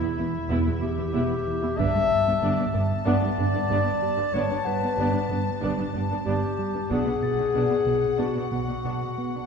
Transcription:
Already playing: clarinet E4, violin section E5
0.01 cello section E2, viola section B3 E4
0.17 double bass section E1, cello section E2, analog synth bass E2, viola section B3 E4
0.49 double bass section E1, cello section E2, analog synth bass E2, viola section B3 E4
0.65 cello section E2, viola section B3 E4
0.81 double bass section E1, cello section E2, analog synth bass E2, viola section B3 E4, clarinet G4
0.97 cello section E2, viola section B3 E4
1.13 double bass section E1, cello section E2, analog synth bass E2, viola section B3 E4, celesta E5
1.47 analog synth bass E3
1.62 cello section E2, viola section B3 E4
1.78 double bass section G1, cello section G2, analog synth bass G2, viola section B3 D4, clarinet E5, violin section A5, taiko
1.94 cello section G2, viola section B3 D4
2.12 analog synth bass G2
2.27 cello section G2, viola section B3 D4
2.42 double bass section G1, cello section G2, analog synth bass G2, viola section B3 D4
2.59 cello section G2, viola section B3 D4
2.74 double bass section G1, cello section G2, analog synth bass G2, viola section B3 D4
3.06 double bass section G1, cello section G2, analog synth bass G2, viola section B3 D4, clarinet D5, celesta F#5
3.22 cello section G2, viola section B3 D4
3.37 double bass section G1, cello section G2, analog synth bass G2, viola section B3 D4
3.53 cello section G2, viola section B3 D4
3.68 double bass section G1, cello section G2, analog synth bass G2, viola section B3 D4
4.02 analog synth bass G3
4.16 cello section G2, viola section B3 D4
4.32 double bass section G1, cello section G2, analog synth bass G2, viola section B3 D4, clarinet C#5
4.48 cello section G2, viola section B3 D4
4.65 analog synth bass G2, celesta G4 F#5, clarinet B4
4.80 cello section G2, viola section B3 D4
4.95 double bass section G1, cello section G2, analog synth bass G2, viola section B3 D4
5.12 cello section G2, viola section B3 D4
5.29 double bass section G1, cello section G2, analog synth bass G2, viola section B3 D4
5.61 double bass section G1, cello section G2, analog synth bass G2, viola section B3 D4
5.77 cello section G2, viola section B3 D4
5.93 double bass section G1, cello section G2, analog synth bass G2, viola section B3 D4
6.10 cello section G2, viola section B3 D4
6.25 double bass section G1, cello section G2, analog synth bass G2, viola section B3 D4, clarinet G4
6.59 analog synth bass G3
6.74 cello section G2, viola section B3 D4
6.90 double bass section B1, cello section B2, analog synth bass B2, viola section B3 D4, clarinet G#4, violin section F#5, taiko
7.06 cello section B2, viola section B3 D4
7.22 analog synth bass B2, celesta A6
7.38 cello section B2, viola section B3 D4
7.54 double bass section B1, cello section B2, analog synth bass B2, viola section B3 D4
7.70 cello section B2, viola section B3 D4
7.86 double bass section B1, cello section B2, analog synth bass B2, viola section B3 D4
8.18 double bass section B1, cello section B2, analog synth bass B2, viola section B3 D4, clarinet F#4
8.35 cello section B2, viola section B3 D4
8.51 double bass section B1, cello section B2, analog synth bass B2, viola section B3 D4
8.67 cello section B2, viola section B3 D4
8.84 double bass section B1, cello section B2, analog synth bass B2, viola section B3 D4
9.18 analog synth bass B3
9.35 cello section B2, viola section B3 D4

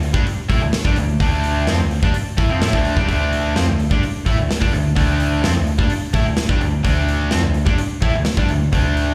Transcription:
Already playing: tine electric piano D2
0.03 open hi-hat
0.13 tine electric piano G2, overdriven electric guitar G3 D4, kick
0.25 tine electric piano D2, muted distorted electric guitar stroke, muted overdriven electric guitar stroke, open hi-hat
0.50 tine electric piano A2, overdriven electric guitar A3 E4, kick, open hi-hat
0.61 tine electric piano D2, overdriven electric guitar D3 A3
0.72 tine electric piano D2, muted distorted electric guitar stroke, muted overdriven electric guitar stroke, snare, open hi-hat
0.85 tine electric piano G2, overdriven electric guitar G3 D4, kick
0.96 tine electric piano D2, overdriven electric guitar D3 A3, open hi-hat
1.20 tine electric piano D2, overdriven electric guitar D3 A3 D4, kick, open hi-hat
1.44 open hi-hat
1.67 tine electric piano F2, overdriven electric guitar F3 C4, snare, open hi-hat
1.79 tine electric piano D2, overdriven electric guitar D3 A3
1.91 open hi-hat
2.03 tine electric piano G2, overdriven electric guitar G3 D4, kick
2.14 tine electric piano D2, muted distorted electric guitar stroke, muted overdriven electric guitar stroke, open hi-hat
2.38 tine electric piano A2, overdriven electric guitar A3 E4, kick, open hi-hat
2.49 tine electric piano F2, overdriven electric guitar F3 C4
2.61 tine electric piano A2, overdriven electric guitar A3 E4, snare, open hi-hat
2.73 tine electric piano D2, overdriven electric guitar D3 A3 D4, kick
2.85 open hi-hat
2.97 tine electric piano G2, overdriven electric guitar G3 D4, kick
3.08 tine electric piano D2, overdriven electric guitar D3 A3 D4, kick, open hi-hat
3.33 open hi-hat
3.56 tine electric piano F2, overdriven electric guitar F3 C4, snare, open hi-hat
3.67 tine electric piano D2, overdriven electric guitar D3 A3
3.79 open hi-hat
3.90 tine electric piano G2, overdriven electric guitar G3 D4, kick
4.03 tine electric piano D2, muted overdriven electric guitar stroke, muted distorted electric guitar stroke, open hi-hat
4.25 tine electric piano A2, overdriven electric guitar A3 E4, kick, open hi-hat
4.37 tine electric piano D2, overdriven electric guitar D3 A3
4.49 tine electric piano D2, muted distorted electric guitar stroke, muted overdriven electric guitar stroke, snare, open hi-hat
4.62 tine electric piano G2, overdriven electric guitar G3 D4, kick
4.73 tine electric piano D2, overdriven electric guitar D3 A3, open hi-hat
4.96 tine electric piano D2, overdriven electric guitar D3 A3 D4, kick, open hi-hat
5.20 open hi-hat
5.43 tine electric piano F2, overdriven electric guitar F3 C4, snare, open hi-hat
5.56 tine electric piano D2, overdriven electric guitar D3 A3
5.67 open hi-hat
5.79 tine electric piano G2, overdriven electric guitar G3 D4, kick
5.90 tine electric piano D2, muted distorted electric guitar stroke, muted overdriven electric guitar stroke, open hi-hat
6.14 tine electric piano A2, overdriven electric guitar A3 E4, kick, open hi-hat
6.25 tine electric piano D2, overdriven electric guitar D3 A3
6.37 tine electric piano D2, muted overdriven electric guitar stroke, muted distorted electric guitar stroke, snare, open hi-hat
6.49 tine electric piano G2, overdriven electric guitar G3 D4, kick
6.61 tine electric piano D2, overdriven electric guitar D3 A3, open hi-hat
6.84 tine electric piano D2, overdriven electric guitar D3 A3 D4, kick, open hi-hat
7.08 open hi-hat
7.31 tine electric piano F2, overdriven electric guitar F3 C4, snare, open hi-hat
7.42 tine electric piano D2, overdriven electric guitar D3 A3
7.54 open hi-hat
7.65 tine electric piano G2, overdriven electric guitar G3 D4, kick
7.78 tine electric piano D2, muted overdriven electric guitar stroke, muted distorted electric guitar stroke, open hi-hat
8.01 tine electric piano A2, overdriven electric guitar A3 E4, kick, open hi-hat
8.13 tine electric piano D2, overdriven electric guitar D3 A3
8.24 tine electric piano D2, muted overdriven electric guitar stroke, muted distorted electric guitar stroke, snare, open hi-hat
8.37 tine electric piano G2, overdriven electric guitar G3 D4, kick
8.49 tine electric piano D2, overdriven electric guitar D3 A3, open hi-hat
8.72 tine electric piano D2, overdriven electric guitar D3 A3 D4, kick, open hi-hat
8.97 open hi-hat

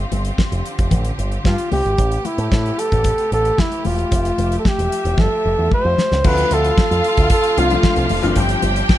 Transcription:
Already playing: string section D3 C4 F4 G4
0.12 picked electric bass G1, closed hi-hat, muted conga
0.25 closed hi-hat
0.38 kick, snare, high conga
0.51 picked electric bass F1, closed hi-hat
0.66 closed hi-hat
0.79 picked electric bass F1, kick, closed hi-hat
0.91 picked electric bass A1, kick, closed hi-hat, muted conga, low conga
1.04 closed hi-hat
1.18 picked electric bass G1, closed hi-hat
1.32 closed hi-hat
1.44 picked electric bass G2, flugelhorn F4, kick, snare, high conga
1.58 closed hi-hat
1.71 picked electric bass C2, flugelhorn G4, open hi-hat, high conga
1.85 picked electric bass G#1, closed hi-hat
1.98 picked electric bass A1, string section C3 A3 B3, kick, closed hi-hat, muted conga
2.12 closed hi-hat
2.25 flugelhorn E4, closed hi-hat, muted conga
2.38 picked electric bass A2, closed hi-hat
2.52 picked electric bass A2, kick, snare, high conga
2.66 closed hi-hat
2.79 flugelhorn A4, closed hi-hat
2.92 picked electric bass A1, kick, closed hi-hat
3.04 kick, closed hi-hat, muted conga
3.18 closed hi-hat
3.32 picked electric bass A1, flugelhorn A4, closed hi-hat
3.45 closed hi-hat
3.58 flugelhorn E4, kick, snare, high conga
3.72 closed hi-hat
3.85 picked electric bass E1, flugelhorn F4, open hi-hat, high conga
3.99 closed hi-hat
4.11 picked electric bass F1, string section F3 E5, kick, closed hi-hat, muted conga
4.25 closed hi-hat
4.38 picked electric bass F1, closed hi-hat, muted conga
4.52 closed hi-hat
4.59 flugelhorn A4
4.65 flugelhorn G4, kick, snare, high conga
4.78 picked electric bass E1, closed hi-hat
4.92 closed hi-hat
5.05 picked electric bass E1, closed hi-hat
5.17 picked electric bass G1, flugelhorn A4, kick, snare, muted conga, low conga
5.45 picked electric bass F1
5.58 picked electric bass E2
5.71 flugelhorn C5, kick, high conga
5.85 picked electric bass F2
5.98 snare, high conga
6.12 picked electric bass C#2, snare
6.23 picked electric bass D2, string section C3 F3 D4 F4, grand piano F3 A3 C4 D4 F4, violin section F4 F5, flugelhorn B4, kick, crash, muted conga
6.37 closed hi-hat
6.51 picked electric bass D2, flugelhorn A4, closed hi-hat, muted conga
6.64 closed hi-hat
6.78 kick, snare, high conga
6.91 picked electric bass F2, closed hi-hat
7.04 closed hi-hat
7.17 picked electric bass D2, kick, closed hi-hat
7.30 flugelhorn A4, kick, closed hi-hat
7.43 closed hi-hat
7.57 picked electric bass C2, grand piano E3 A3 C4 D4 F4, flugelhorn F4, closed hi-hat
7.70 grand piano F3 A3 C4 D4 F4, closed hi-hat
7.83 kick, snare, high conga
7.96 picked electric bass C2, closed hi-hat
8.09 picked electric bass F1, open hi-hat, high conga
8.22 picked electric bass F#1, grand piano E3 A3 C4 D4 F4, closed hi-hat
8.35 picked electric bass G1, grand piano F3 G3 C4 D4 G4, string section G4, violin section G4 G5, kick, closed hi-hat, muted conga
8.49 closed hi-hat
8.62 picked electric bass G1, closed hi-hat, muted conga
8.76 closed hi-hat
8.89 kick, snare, high conga

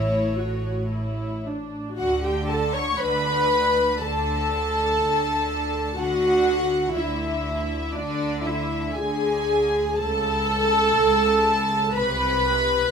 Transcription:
Already playing: double bass section A1, cello section A2, viola section E4, violin section C#5
0.37 viola section F#4
0.91 viola section E4
1.46 viola section D4
1.97 double bass section D2, cello section D3, viola section F#4, violin section F#5
2.23 viola section G4, violin section G5
2.48 viola section A4, violin section A5
2.73 viola section C#5, violin section C#6
2.97 double bass section D2, cello section D3, viola section B4, violin section B5
4.00 double bass section D2, cello section D3, viola section A4, violin section A5
5.01 double bass section D2, cello section D3
5.99 double bass section D2, cello section D3, viola section F#4, violin section F#5
6.96 double bass section D2, cello section D3, viola section E4, violin section E5
7.93 double bass section D2, cello section D3, viola section D4, violin section D5
8.43 viola section E4, violin section E5
8.95 double bass section D2, cello section D3, viola section G#4, violin section G#5
9.98 double bass section C#2, cello section C#3, viola section A4, violin section A5
10.99 double bass section C#2, cello section C#3
11.94 double bass section C2, cello section C3, viola section B4, violin section B5

